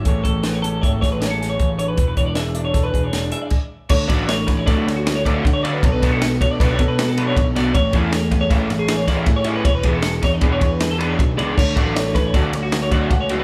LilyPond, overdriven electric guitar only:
\new Staff \with { instrumentName = "Overdriven electric guitar" } { \time 5/4 \key a \major \tempo 4 = 156 r1 r4 | r1 r4 | r8 <d fis a d'>8 r4 <d fis a d'>8 r4 <d fis a d'>8 r8 <d fis a d'>8 | r8 <b, fis b d'>8 r4 <b, fis b d'>8 r4 <b, fis b d'>8 r8 <b, fis b d'>8 |
r8 <e a cis' e'>8 r4 <e a cis' e'>8 r4 <e a cis' e'>8 r8 <e a cis' e'>8 | r8 <e b d' gis'>8 r4 <e b d' gis'>8 r4 <e b d' gis'>8 r8 <e b d' gis'>8 | r8 <fis a d' fis'>8 r4 <fis a d' fis'>8 r4 <fis a d' fis'>8 r8 <fis a d' fis'>8 | }